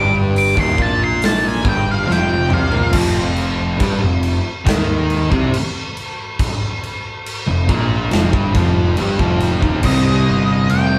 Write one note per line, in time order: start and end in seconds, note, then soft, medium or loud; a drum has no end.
0.00 0.53 G1 loud
0.00 0.55 G2 loud
0.00 0.56 G3 loud
0.00 0.14 D6 medium
0.36 0.57 D6 medium
0.36 open hi-hat medium
0.56 0.77 D#1 loud
0.56 0.77 D#2 medium
0.56 0.77 D#3 loud
0.56 kick loud
0.60 0.79 C6 medium
0.78 1.61 A#1 loud
0.78 1.63 A#2 loud
0.78 1.64 A#3 medium
0.78 1.01 A5 medium
0.78 kick loud
1.04 1.23 C6 loud
1.22 snare loud
1.22 open hi-hat medium
1.26 1.45 A5 medium
1.48 1.67 G#5 loud
1.65 2.05 G1 loud
1.65 2.07 G2 loud
1.65 2.07 G3 loud
1.65 kick loud
1.69 1.88 G5 loud
1.91 2.10 F5 medium
2.07 2.48 F1 loud
2.07 2.49 F2 medium
2.07 2.50 F3 loud
2.07 snare medium
2.12 2.52 G5 loud
2.30 high tom medium
2.50 2.71 C2 medium
2.50 2.72 C3 medium
2.50 2.72 C4 loud
2.50 2.94 F5 loud
2.50 mid tom medium
2.72 2.93 A#1 loud
2.72 2.93 A#2 medium
2.72 2.93 A#3 medium
2.72 floor tom medium
2.93 3.76 F1 medium
2.93 3.79 F2 loud
2.93 3.79 F3 loud
2.93 kick loud
2.93 crash loud
2.93 crash medium
3.36 crash medium
3.80 4.01 G1 medium
3.80 4.01 G2 medium
3.80 4.01 G3 loud
3.80 kick loud
3.80 crash medium
4.02 4.42 F1 medium
4.02 4.37 F2 medium
4.23 crash medium
4.66 5.28 D#2 loud
4.66 5.30 D#3 loud
4.66 5.31 D#4 loud
4.66 kick loud
4.66 snare loud
4.66 crash medium
5.10 crash medium
5.32 5.52 C2 loud
5.32 5.52 C3 medium
5.32 5.52 C4 loud
5.32 kick loud
5.54 crash loud
5.97 crash medium
6.39 kick loud
6.39 crash medium
6.83 crash medium
7.26 crash medium
7.47 7.67 F1 medium
7.47 7.69 F2 medium
7.69 8.09 A#1 loud
7.69 8.11 A#2 loud
7.69 8.12 A#3 loud
7.69 kick loud
7.69 crash medium
8.11 8.32 F1 loud
8.11 8.33 F2 loud
8.11 8.33 F3 loud
8.11 snare loud
8.11 crash medium
8.33 8.54 G1 loud
8.33 8.55 G2 medium
8.33 8.55 G3 loud
8.33 kick loud
8.55 8.95 F1 loud
8.55 8.98 F2 loud
8.55 8.98 F3 loud
8.55 kick loud
8.55 crash medium
8.97 9.18 G1 loud
8.97 9.19 G2 medium
8.97 9.18 G3 loud
8.97 crash medium
9.02 9.20 G3 loud
9.19 9.59 F1 loud
9.19 9.62 F2 medium
9.19 9.63 F3 loud
9.19 kick loud
9.40 snare soft
9.40 crash medium
9.62 9.83 D#1 loud
9.62 9.83 D#2 medium
9.62 9.84 D#3 medium
9.62 kick loud
9.81 10.23 C2 loud
9.81 10.99 C3 medium
9.81 10.99 G3 medium
9.81 10.73 D#5 loud
9.81 kick loud
9.81 crash loud
9.81 crash medium
9.86 10.99 C3 medium
9.86 10.99 G3 loud
9.86 10.99 C4 loud
10.29 10.67 G1 medium
10.70 10.99 F1 medium
10.70 10.99 G5 medium
10.70 crash medium